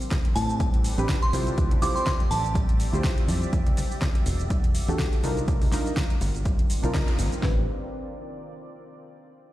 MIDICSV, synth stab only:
0, 0, Header, 1, 2, 480
1, 0, Start_track
1, 0, Key_signature, 0, "minor"
1, 0, Tempo, 487805
1, 1553, Time_signature, 4, 2, 24, 8
1, 9375, End_track
2, 0, Start_track
2, 0, Title_t, "Synth stab"
2, 0, Program_c, 0, 62
2, 960, Note_on_c, 0, 60, 91
2, 964, Note_on_c, 0, 62, 82
2, 968, Note_on_c, 0, 67, 86
2, 971, Note_on_c, 0, 71, 106
2, 1068, Note_off_c, 0, 60, 0
2, 1069, Note_off_c, 0, 62, 0
2, 1071, Note_off_c, 0, 67, 0
2, 1073, Note_off_c, 0, 71, 0
2, 1306, Note_on_c, 0, 64, 91
2, 1310, Note_on_c, 0, 65, 85
2, 1313, Note_on_c, 0, 67, 84
2, 1316, Note_on_c, 0, 72, 97
2, 1764, Note_off_c, 0, 64, 0
2, 1766, Note_off_c, 0, 65, 0
2, 1767, Note_off_c, 0, 67, 0
2, 1769, Note_off_c, 0, 72, 0
2, 1785, Note_on_c, 0, 64, 91
2, 1789, Note_on_c, 0, 65, 83
2, 1793, Note_on_c, 0, 67, 88
2, 1796, Note_on_c, 0, 72, 105
2, 1984, Note_off_c, 0, 64, 0
2, 1986, Note_off_c, 0, 65, 0
2, 1988, Note_off_c, 0, 67, 0
2, 1989, Note_off_c, 0, 72, 0
2, 2878, Note_on_c, 0, 64, 84
2, 2885, Note_on_c, 0, 65, 75
2, 2892, Note_on_c, 0, 67, 78
2, 2899, Note_on_c, 0, 72, 93
2, 3455, Note_off_c, 0, 64, 0
2, 3459, Note_off_c, 0, 65, 0
2, 3462, Note_off_c, 0, 67, 0
2, 3466, Note_off_c, 0, 72, 0
2, 4803, Note_on_c, 0, 62, 93
2, 4806, Note_on_c, 0, 66, 85
2, 4810, Note_on_c, 0, 67, 84
2, 4813, Note_on_c, 0, 69, 103
2, 4909, Note_off_c, 0, 62, 0
2, 4911, Note_off_c, 0, 66, 0
2, 4912, Note_off_c, 0, 67, 0
2, 4914, Note_off_c, 0, 69, 0
2, 5148, Note_on_c, 0, 62, 89
2, 5151, Note_on_c, 0, 63, 86
2, 5155, Note_on_c, 0, 65, 85
2, 5159, Note_on_c, 0, 70, 98
2, 5605, Note_off_c, 0, 62, 0
2, 5606, Note_off_c, 0, 63, 0
2, 5608, Note_off_c, 0, 65, 0
2, 5610, Note_off_c, 0, 70, 0
2, 5628, Note_on_c, 0, 62, 96
2, 5632, Note_on_c, 0, 63, 87
2, 5635, Note_on_c, 0, 65, 86
2, 5639, Note_on_c, 0, 70, 106
2, 5826, Note_off_c, 0, 62, 0
2, 5827, Note_off_c, 0, 63, 0
2, 5829, Note_off_c, 0, 65, 0
2, 5831, Note_off_c, 0, 70, 0
2, 6716, Note_on_c, 0, 62, 84
2, 6723, Note_on_c, 0, 63, 78
2, 6730, Note_on_c, 0, 65, 78
2, 6737, Note_on_c, 0, 70, 92
2, 7294, Note_off_c, 0, 62, 0
2, 7297, Note_on_c, 0, 60, 84
2, 7298, Note_off_c, 0, 63, 0
2, 7301, Note_off_c, 0, 65, 0
2, 7305, Note_off_c, 0, 70, 0
2, 7308, Note_on_c, 0, 62, 75
2, 7318, Note_on_c, 0, 67, 78
2, 7328, Note_on_c, 0, 71, 96
2, 7488, Note_off_c, 0, 60, 0
2, 7494, Note_off_c, 0, 62, 0
2, 7499, Note_off_c, 0, 67, 0
2, 7505, Note_off_c, 0, 71, 0
2, 9375, End_track
0, 0, End_of_file